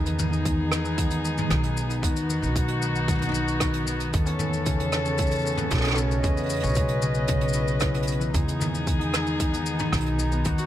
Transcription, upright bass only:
0.00 1.47 E2 medium
1.50 2.00 B1 loud
2.03 2.44 E2 medium
2.42 4.10 B1 medium
4.14 5.68 E2 loud
5.71 6.21 B1 loud
6.24 6.65 E2 medium
6.63 8.31 B1 medium
8.34 9.89 E2 medium
9.93 10.42 B1 medium
10.46 10.66 E2 medium

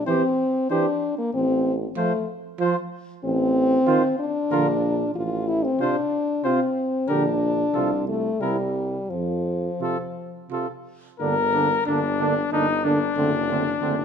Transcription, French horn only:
0.06 0.69 C4 medium
0.71 1.17 D4 medium
1.18 1.33 A#3 medium
1.34 1.73 C4 medium
1.96 2.26 A3 medium
3.24 4.15 C4 medium
4.19 5.13 D4 medium
5.15 5.49 F4 medium
5.48 5.66 E4 medium
5.65 5.83 C4 medium
5.81 6.46 D4 medium
6.45 7.11 C4 medium
7.09 8.08 D4 medium
8.08 8.42 A3 medium
8.41 9.11 G3 medium
9.10 10.50 F3 medium
11.20 11.35 A#3 soft
11.53 11.68 A#3 soft
11.87 12.01 A#3 soft
12.20 12.34 A#3 soft
12.52 12.66 A#3 soft
12.84 12.99 A#3 soft
13.16 13.31 A3 soft
13.49 13.63 A3 soft
13.81 13.95 A3 soft

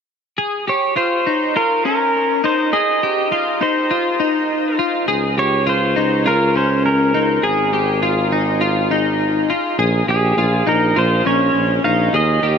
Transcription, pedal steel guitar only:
0.69 0.97 C#5 medium
0.97 1.56 C5 medium
1.57 1.84 A#4 medium
1.86 2.46 A#4 medium
2.45 2.72 C5 medium
2.73 3.62 D#5 medium
3.62 4.75 C5 medium
5.39 5.68 C#5 medium
5.69 6.23 C5 medium
6.28 6.57 A#4 medium
6.57 6.83 C5 medium
6.86 7.46 A#4 medium
7.43 9.45 G#4 medium
10.10 10.70 G#4 medium
10.69 10.98 A#4 medium
10.98 11.26 C5 medium
11.27 11.84 C#5 medium
11.84 12.15 F5 medium
12.16 12.58 D#5 medium

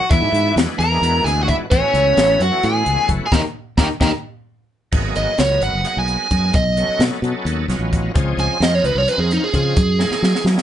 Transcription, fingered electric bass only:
0.11 0.20 E2 medium
0.22 0.31 G#2 medium
0.32 0.51 G#2 medium
0.56 0.65 E2 medium
0.79 0.98 E2 medium
1.02 1.20 E2 medium
1.24 1.52 D2 medium
1.59 muted fingered electric bass stroke soft
1.72 1.81 A1 loud
1.94 2.12 C#2 medium
2.17 2.36 A1 medium
2.40 2.49 F#2 medium
2.64 2.82 A2 loud
2.86 2.96 C#2 medium
3.09 3.18 F#1 medium
3.32 3.41 D#2 loud
3.78 3.87 D#2 medium
4.01 4.10 D#2 medium
4.93 5.12 G#1 medium
5.17 5.26 G#1 medium
5.39 5.57 C#2 medium
5.61 5.71 G#1 medium
5.73 5.83 F#1 medium
5.97 6.15 B1 medium
6.31 6.50 F#2 medium
6.54 6.82 B1 medium
6.89 muted fingered electric bass stroke soft
6.99 7.09 B2 medium
7.22 7.32 B2 medium
7.45 7.64 D#2 medium
7.68 7.78 B1 medium
7.79 8.08 A1 medium
8.16 8.34 C#2 medium
8.37 8.47 C#2 medium
8.60 8.79 F2 medium
8.84 8.93 C#2 medium
8.95 9.05 C2 medium
9.18 9.37 F2 medium
9.54 9.72 C#3 medium
9.77 10.05 F#2 loud
10.11 muted fingered electric bass stroke soft
10.22 10.32 F#3 medium
10.44 10.54 F#3 medium

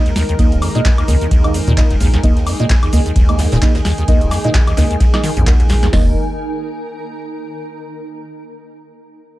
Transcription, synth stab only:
0.39 0.49 A#3 loud
0.39 0.49 D#4 medium
0.39 0.49 D#5 loud
0.75 0.80 A#3 medium
0.75 0.80 D#4 medium
0.75 0.80 D#5 loud
1.08 1.15 A#3 medium
1.08 1.15 D#4 medium
1.08 1.15 D#5 medium
1.44 1.49 A#3 medium
1.44 1.49 D#4 medium
1.44 1.49 D#5 medium
1.77 1.88 A#3 medium
1.77 1.88 D#4 medium
1.77 1.88 D#5 loud
2.24 2.34 A#3 medium
2.24 2.34 D#4 medium
2.24 2.34 D#5 loud
2.60 2.65 A#3 medium
2.60 2.65 D#4 medium
2.60 2.65 D#5 loud
2.93 2.99 A#3 medium
2.93 2.99 D#4 medium
2.93 2.99 D#5 medium
3.29 3.34 A#3 medium
3.29 3.34 D#4 medium
3.29 3.34 D#5 medium
3.62 3.72 A#3 medium
3.62 3.72 D#4 medium
3.62 3.72 D#5 loud
4.08 4.19 A#3 medium
4.08 4.19 D#4 medium
4.08 4.19 D#5 loud
4.44 4.49 A#3 medium
4.44 4.49 D#4 medium
4.44 4.49 D#5 medium
4.78 4.84 A#3 medium
4.78 4.84 D#4 medium
4.78 4.84 D#5 medium
5.14 5.19 A#3 medium
5.14 5.19 D#4 medium
5.14 5.19 D#5 medium
5.47 5.53 A#3 medium
5.47 5.53 D#4 medium
5.47 5.53 F#5 medium
5.93 6.11 A#3 medium
5.93 6.11 D#4 medium
5.93 6.11 D#5 loud

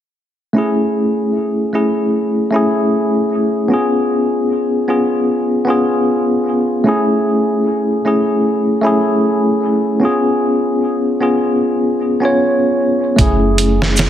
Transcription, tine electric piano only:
0.53 1.68 A3 medium
0.53 1.69 C#4 medium
0.53 1.70 E4 medium
0.58 1.71 G#4 medium
1.73 2.48 A3 medium
1.73 2.49 C#4 medium
1.73 2.49 E4 medium
1.73 2.49 G#4 medium
2.51 3.66 A3 medium
2.51 3.67 C#4 medium
2.51 3.68 E4 medium
2.56 3.69 G#4 medium
3.68 4.84 B3 medium
3.68 4.85 C#4 medium
3.68 4.86 F4 medium
3.73 4.87 G#4 medium
4.88 5.64 B3 medium
4.88 5.64 C#4 medium
4.88 5.64 F4 medium
4.88 5.65 G#4 medium
5.65 6.81 B3 medium
5.65 6.82 C#4 medium
5.65 6.83 F4 medium
5.70 6.84 G#4 medium
6.84 8.00 A3 medium
6.84 8.00 C#4 medium
6.84 8.01 E4 medium
6.89 8.02 G#4 medium
8.05 8.80 A3 medium
8.05 8.80 C#4 medium
8.05 8.81 E4 medium
8.05 8.81 G#4 medium
8.81 9.97 A3 medium
8.81 9.98 C#4 medium
8.81 9.99 E4 medium
8.86 10.00 G#4 loud
10.00 11.15 B3 medium
10.00 11.16 C#4 medium
10.00 11.17 F4 medium
10.05 11.18 G#4 medium
11.21 11.96 B3 medium
11.21 11.96 C#4 medium
11.21 11.96 F4 medium
11.21 11.97 G#4 medium
12.20 13.13 B3 medium
12.20 13.14 C#4 medium
12.20 13.15 F4 medium
12.25 13.16 C#5 medium
13.16 14.10 A3 medium
13.16 14.10 C#4 medium
13.16 14.10 E4 medium
13.21 14.10 G#4 medium

